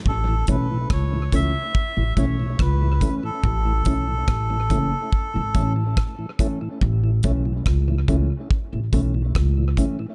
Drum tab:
HH |-x-x-x-x|-x-x-x-x|-x-x-x-x|
SD |--r---r-|--r---r-|--r---r-|
BD |oooooooo|oooooooo|oooooooo|